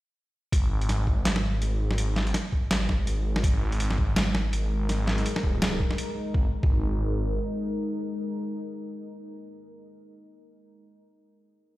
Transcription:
0.52 detuned saw bass G#1, kick, closed hi-hat
0.81 closed hi-hat
0.89 snare, closed hi-hat
1.07 detuned saw bass G#1, kick
1.25 snare, closed hi-hat
1.36 snare
1.61 detuned saw bass G#1, closed hi-hat
1.91 snare
1.98 closed hi-hat
2.16 snare
2.27 closed hi-hat
2.34 snare, closed hi-hat
2.53 kick
2.70 detuned saw bass G#1, snare, closed hi-hat
2.89 kick, snare
3.07 closed hi-hat
3.36 snare
3.43 detuned saw bass G#1, ambient pad G#3 D#4 A#4, kick, closed hi-hat
3.72 closed hi-hat
3.80 closed hi-hat
3.91 snare
3.98 detuned saw bass G#1, kick
4.16 snare, closed hi-hat
4.35 snare
4.53 detuned saw bass G#1, closed hi-hat
4.89 snare, closed hi-hat
5.07 snare
5.18 closed hi-hat
5.26 closed hi-hat
5.36 snare
5.44 detuned saw bass D#1, kick
5.62 snare, closed hi-hat
5.80 kick
5.91 snare
5.98 closed hi-hat
6.34 detuned saw bass G#1, ambient pad G#3 D#4 A#4, kick
6.63 detuned saw bass G#1, kick

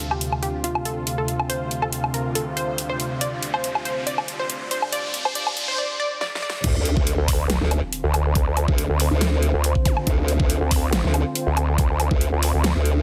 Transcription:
Already playing: analog synth pad D2 C3 F4, ambient pad D4 G4 F5, riser
0.01 ambient pad C5
0.11 synth pluck G4, low woodblock
0.21 closed hi-hat
0.32 low woodblock
0.43 synth pluck G4, closed hi-hat
0.64 synth pluck F4, closed hi-hat
0.75 low woodblock
0.85 synth pluck A4, closed hi-hat
1.07 closed hi-hat
1.18 synth pluck A4
1.28 closed hi-hat
1.40 low woodblock
1.49 synth pluck C5, closed hi-hat
1.71 closed hi-hat
1.82 synth pluck A4, low woodblock
1.93 closed hi-hat
2.04 low woodblock
2.14 synth pluck A#4, closed hi-hat
2.35 synth pluck A4, closed hi-hat
2.57 synth pluck C5, closed hi-hat
2.78 closed hi-hat
2.89 synth pluck C5
3.00 closed hi-hat
3.21 synth pluck D5, closed hi-hat
3.43 closed hi-hat
3.54 synth pluck C5, low woodblock
3.64 ambient pad D5, closed hi-hat
3.75 low woodblock
3.85 synth pluck C5, closed hi-hat
4.07 synth pluck D5, closed hi-hat
4.18 low woodblock
4.28 closed hi-hat
4.40 synth pluck C5
4.50 closed hi-hat
4.71 synth pluck C5, closed hi-hat
4.82 low woodblock
4.93 synth pluck D5, closed hi-hat
5.14 closed hi-hat
5.25 synth pluck C5, low woodblock
5.35 synth pluck D5, closed hi-hat
5.47 low woodblock
5.57 closed hi-hat
5.68 synth pluck C5
5.78 synth pluck D5
6.00 synth pluck D5
6.21 synth pluck D5, snare
6.35 snare
6.42 synth pluck D5
6.50 snare
6.64 wobble bass D2, analog synth pad D3 C4 F4, kick, closed hi-hat, crash, sub drop
6.85 closed hi-hat
6.94 wobble bass D2, ambient pad C5, kick
7.07 closed hi-hat
7.18 wobble bass D2
7.28 kick, open hi-hat
7.50 snare, closed hi-hat
7.61 wobble bass D2, snare
7.71 closed hi-hat, low woodblock
7.93 closed hi-hat
8.04 wobble bass D2
8.14 closed hi-hat, low woodblock
8.35 kick, closed hi-hat
8.57 closed hi-hat, low woodblock
8.68 wobble bass D2, kick
8.78 closed hi-hat
8.89 wobble bass D2
9.00 open hi-hat
9.11 wobble bass D2
9.21 snare, closed hi-hat
9.43 closed hi-hat
9.54 wobble bass D2
9.64 closed hi-hat
9.75 kick
9.85 kick, closed hi-hat, zap
9.97 low woodblock
10.07 wobble bass D2, kick, closed hi-hat
10.28 closed hi-hat
10.40 wobble bass D2, kick
10.50 closed hi-hat
10.61 wobble bass D2
10.71 kick, open hi-hat
10.93 snare, closed hi-hat
11.04 wobble bass D2, snare
11.14 closed hi-hat, low woodblock
11.35 closed hi-hat
11.47 wobble bass D2
11.57 closed hi-hat, low woodblock
11.78 kick, closed hi-hat
12.00 closed hi-hat, low woodblock
12.11 wobble bass D2, kick
12.21 closed hi-hat
12.32 wobble bass D2
12.43 open hi-hat
12.54 wobble bass D2
12.64 snare, closed hi-hat
12.75 wobble bass D2
12.85 closed hi-hat

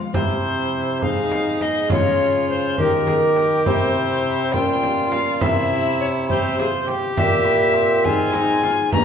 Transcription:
Already playing: harp F3 G#3 C4
0.13 harp C3 C4 E4, bassoon C3, cor anglais E4, recorder C5, frame drum
1.02 harp G#2 G#3 C4 D#4, bassoon G#2, cor anglais D#4, viola G#4, recorder F5, frame drum
1.32 frame drum
1.61 recorder D#5, frame drum
1.90 harp C#3 G#3 F4, bassoon C#3, viola F4, cor anglais F4, recorder C#5, frame drum
2.49 recorder C5
2.78 harp D#3 D#4 G4, bassoon D#3, cor anglais G4, viola G4, recorder A#4, frame drum
3.07 viola G#4, frame drum
3.36 viola G4, frame drum
3.65 harp C3 C4 E4 G4, bassoon C3, cor anglais E4, recorder C5, frame drum
4.53 harp A#2 C#4 F4 A#4, bassoon A#2, cor anglais F4, viola F4, recorder G5, frame drum
4.83 frame drum
5.12 recorder F5, frame drum
5.41 bassoon C3, harp C3, cor anglais E4, viola E4, recorder E5, frame drum
6.00 recorder C#5
6.29 harp C4 E4 G4, cor anglais E4, viola G4, recorder C5, frame drum
6.59 cor anglais F4, viola G#4, frame drum
6.87 cor anglais G4, viola G4, frame drum
7.16 harp A#2, bassoon A#2, cor anglais G4, recorder E5, frame drum
7.45 cor anglais E4
7.75 cor anglais C4
8.04 harp G#2 C4 D#4 G#4, bassoon G#2, viola F4, recorder G#5, frame drum
8.34 viola D#4, frame drum
8.63 viola F4, frame drum
8.92 harp G2 A#3 G4 C#5, bassoon G2, cor anglais C#4, viola G4, recorder A#5, frame drum

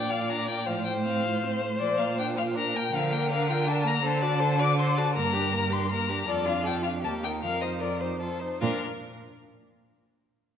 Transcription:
Already playing: cello A#2, viola D4, violin D5 G5
0.10 viola F4, violin F5
0.29 viola D4, violin A#5
0.48 viola A#3, violin G5
0.66 cello A2, viola F3, violin C5 F5
0.85 viola A3, violin G5
1.05 viola C4, violin F5
1.25 viola F4
1.44 viola C4
1.62 viola A3
1.79 cello A#2, viola F3, violin D5
1.98 viola A#3, violin F5
2.18 viola D4, violin G5
2.36 viola F4, violin F5
2.55 viola D4, violin A#4 A#5
2.74 viola A#3, violin G5
2.92 cello D3, viola F3, violin F5
3.11 viola A#3, violin G5
3.30 viola D4, violin F5
3.48 viola F4, violin G5
3.66 viola D4, violin A5
3.85 viola A#3, violin A#5
4.03 cello D3, viola A4, violin C5 A5
4.22 viola F#4, violin D5
4.40 viola A4, violin C5
4.59 viola F#4, violin D5 D6
4.78 viola A4, violin C5 C6
4.96 viola F#4, violin D5 A5
5.14 cello G2, viola A#3, violin A#4 A#5
5.33 viola D4, violin G4
5.53 viola A#3, violin A#4
5.70 viola D4, violin G4 C6
5.84 violin C6
5.90 viola A#3, violin A#4 A#5
6.09 viola D4, violin G4
6.28 cello F2, viola F4, violin A4 D5
6.46 viola D4, violin F4 F5
6.64 viola F4, violin A4 G5
6.82 viola D4, violin F4 F5
7.02 cello D#2, viola A#3, violin G4 A5
7.23 viola D#4, violin A#4 G5
7.41 cello F2, viola F4, violin A#4 F5
7.61 viola D#4, violin C5 D#5
7.80 viola F4, violin A#4 D5
8.01 viola D#4, violin C5
8.20 viola F4, violin A4 C5
8.40 viola D#4, violin C5
8.60 cello A#2, viola D4, violin F4 A#4

